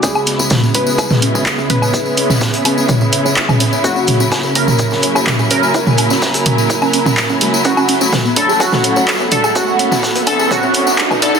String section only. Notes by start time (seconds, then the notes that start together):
0.03 C#3 G#3 B3 E4
3.84 F#3 A#3
7.65 A3
9.55 B3